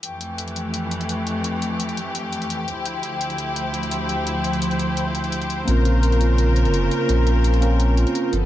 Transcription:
0.03 F2 E3 A3 G4, closed hi-hat
0.21 closed hi-hat
0.38 closed hi-hat
0.48 closed hi-hat
0.56 closed hi-hat
0.74 closed hi-hat
0.91 closed hi-hat
1.01 closed hi-hat
1.09 closed hi-hat
1.27 closed hi-hat
1.44 closed hi-hat
1.62 closed hi-hat
1.80 closed hi-hat
1.89 closed hi-hat
1.97 closed hi-hat
2.15 closed hi-hat
2.33 closed hi-hat
2.42 closed hi-hat
2.50 closed hi-hat
2.68 D2 F3 E4 C5, closed hi-hat
2.85 closed hi-hat
3.03 closed hi-hat
3.21 closed hi-hat
3.30 closed hi-hat
3.38 closed hi-hat
3.56 closed hi-hat
3.74 closed hi-hat
3.83 closed hi-hat
3.91 closed hi-hat
4.09 closed hi-hat
4.27 closed hi-hat
4.44 closed hi-hat
4.53 closed hi-hat
4.62 closed hi-hat
4.71 closed hi-hat
4.79 closed hi-hat
4.97 closed hi-hat
5.15 closed hi-hat
5.24 closed hi-hat
5.32 closed hi-hat
5.42 closed hi-hat
5.50 closed hi-hat
5.65 A#1 C#3 A#3 C4 C#4 A#4, closed hi-hat
5.69 F4 A#4
5.85 F4, closed hi-hat
6.03 A#4, closed hi-hat
6.12 closed hi-hat
6.18 A#3 C4 C#4, closed hi-hat
6.22 F4 A#4
6.38 A#4, closed hi-hat
6.56 F4, closed hi-hat
6.65 F1, closed hi-hat
6.74 closed hi-hat
6.91 F4, closed hi-hat
7.06 A#1 A#3 C4 C#4 A#4, closed hi-hat
7.11 F4 A#4
7.27 closed hi-hat
7.44 A#4, closed hi-hat
7.54 closed hi-hat
7.61 A#3 C4 C#4 F4 A#4, closed hi-hat
7.80 closed hi-hat
7.97 F4, closed hi-hat
8.07 closed hi-hat
8.15 A#4, closed hi-hat
8.33 G1 F3 B3 A4, closed hi-hat

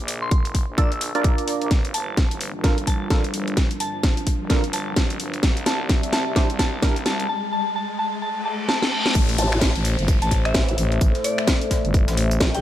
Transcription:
Already playing: A#3 A#4 D5 F5, riser
0.00 A#1
0.08 open hi-hat
0.22 C6
0.31 F1, kick, closed hi-hat
0.45 closed hi-hat
0.55 kick, open hi-hat
0.68 A#1
0.78 D4 F4 A#4 D5 E6, kick, closed hi-hat
0.92 closed hi-hat
1.01 open hi-hat
1.15 A#1 D4 F4 A#4 D5, closed hi-hat
1.24 kick, closed hi-hat
1.38 closed hi-hat
1.48 open hi-hat
1.61 A#1, closed hi-hat
1.71 G1 G3 D4 F4, kick, snare, closed hi-hat
1.85 closed hi-hat
1.94 G1 A5, open hi-hat
2.17 kick, snare, closed hi-hat
2.31 G1, closed hi-hat
2.41 open hi-hat
2.54 F1
2.64 D4 F4 A4 A#4, kick, snare, closed hi-hat
2.78 G1, closed hi-hat
2.87 A5, kick, open hi-hat
3.10 G1 D4 F4 A4 A#4, kick, snare, closed hi-hat
3.24 closed hi-hat
3.34 G1, open hi-hat
3.48 closed hi-hat
3.57 G1, kick, snare, closed hi-hat
3.71 closed hi-hat
3.80 A5, open hi-hat
4.03 kick, snare, closed hi-hat
4.17 closed hi-hat
4.27 kick, open hi-hat
4.41 F1
4.50 D4 F4 A4 A#4, kick, snare, closed hi-hat
4.64 G1, closed hi-hat
4.73 A5, open hi-hat
4.96 A1, kick, snare, closed hi-hat
5.10 closed hi-hat
5.20 G1, open hi-hat
5.34 closed hi-hat
5.43 C2 C4 G4 D5 E5, kick, snare, closed hi-hat
5.57 closed hi-hat
5.66 C2 A5, snare, open hi-hat
5.89 kick, snare, closed hi-hat
6.03 C2, closed hi-hat
6.13 A5, snare, open hi-hat
6.27 A#1
6.36 D4 E4 G4 C5, kick, snare, closed hi-hat
6.50 C2, closed hi-hat
6.59 A5, kick, snare, open hi-hat
6.82 C2 D4 E4 G4 A#4, kick, snare, closed hi-hat
6.96 closed hi-hat
7.06 C2 A5, snare, open hi-hat
7.20 closed hi-hat
7.29 A5
7.52 A5
7.76 A5
7.99 A5
8.22 A5, reverse cymbal
8.45 A5
8.69 A5, snare
8.82 snare
8.92 A5
9.06 snare
9.15 A1 A3 A4 C5 E5, kick, closed hi-hat, tambourine, downlifter
9.29 snare, closed hi-hat
9.38 A1 A5, open hi-hat, tambourine
9.52 finger snap, closed hi-hat
9.61 kick, snare, closed hi-hat, tambourine
9.75 A1, closed hi-hat
9.85 open hi-hat, tambourine
9.99 G1, closed hi-hat
10.08 kick, closed hi-hat, tambourine
10.22 A1 A5, closed hi-hat
10.31 kick, open hi-hat, tambourine
10.45 E5, finger snap, closed hi-hat
10.54 A1, kick, snare, closed hi-hat, tambourine
10.68 closed hi-hat
10.78 A1, open hi-hat, tambourine
10.92 closed hi-hat
11.01 A1, kick, closed hi-hat, tambourine
11.15 snare, closed hi-hat
11.24 D5, open hi-hat, tambourine
11.38 finger snap, snare, closed hi-hat
11.47 kick, snare, closed hi-hat, tambourine
11.61 closed hi-hat
11.71 kick, snare, open hi-hat, tambourine
11.85 G1, closed hi-hat
11.94 kick, closed hi-hat, tambourine
12.08 A1, snare, closed hi-hat, tambourine
12.17 open hi-hat
12.31 closed hi-hat, tambourine
12.40 A#1, kick, snare, closed hi-hat, tambourine
12.54 G5, closed hi-hat

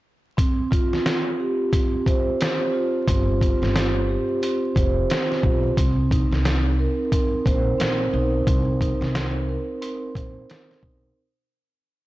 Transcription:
0.37 C4, kick, closed hi-hat
0.71 F4, kick, closed hi-hat
0.93 snare
1.06 C4, snare, closed hi-hat
1.40 G4
1.73 C4, kick, closed hi-hat
2.06 C5, kick, closed hi-hat
2.41 C4, snare, closed hi-hat
2.73 F4
3.08 G1 C4, kick, closed hi-hat
3.41 F4, kick, closed hi-hat
3.62 G1, snare
3.75 C4, snare, closed hi-hat
4.09 G4
4.43 C4, closed hi-hat
4.75 F1 C5, kick, closed hi-hat
5.10 C4, snare, closed hi-hat
5.32 snare
5.43 B1 F4, kick
5.77 C2 C4, kick, closed hi-hat
6.10 D#4, kick, closed hi-hat
6.31 C2, snare
6.45 C4, snare, closed hi-hat
6.79 A#4
7.12 C4, kick, closed hi-hat
7.45 A#1 C5, kick, closed hi-hat
7.78 A#1 C4, snare, closed hi-hat
8.13 B1 D#4
8.47 C2 C4, kick, closed hi-hat
8.81 D#4, kick, closed hi-hat
9.01 C2, snare
9.14 C4, snare, closed hi-hat
9.49 A#4
9.81 C4, closed hi-hat
10.15 A#1 C5, kick, closed hi-hat
10.50 C4, snare, closed hi-hat
10.71 snare
10.82 B1 D#4, kick

